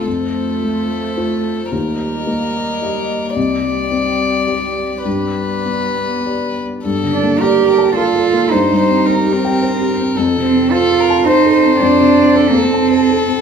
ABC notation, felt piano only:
X:1
M:3/4
L:1/8
Q:1/4=109
K:Fmix
V:1 name="Felt piano"
F,,2 A,2 [Fc]2 | E,,2 B,2 [Ge]2 | C,,2 C2 [Gd]2 | G,,2 =B,2 [Gd]2 |
(3G,, D, B, (3d B a (3B A B, | (3G,, G, C (3c G g (3c G C | (3F,, C, C (3c A a (3c A C | (3F,, C, C (3c A a (3c A C |]